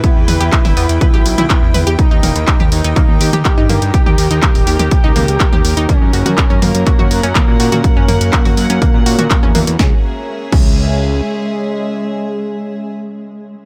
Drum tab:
CC |----------------|----------------|----------------|----------------|
HH |x-oxxooxx-oxx-ox|x-oxx-oxx-oxx-ox|x-oxxooxx-oxx-ox|x-oxx-oxx-oxx-ox|
CP |----x-------x---|----x---x---x---|----x-------x---|----x---x---x---|
SD |----------------|----------------|----------------|----------------|
T2 |--o--o--o--o--o-|--o--o--o--o--o-|-o--o--o--o--o--|o--o--o--o--o--o|
BD |o---o---o---o---|o---o---o---o---|o---o---o---o---|o---o---o---o---|

CC |----------------|------x---------|----------------|
HH |x-oxxooxx-oxx-ox|----------------|----------------|
CP |----x-------x---|----------------|----------------|
SD |----------------|o---------------|----------------|
T2 |--o--o--o--o--o-|----------------|----------------|
BD |o---o---o---o---|o-----o---------|----------------|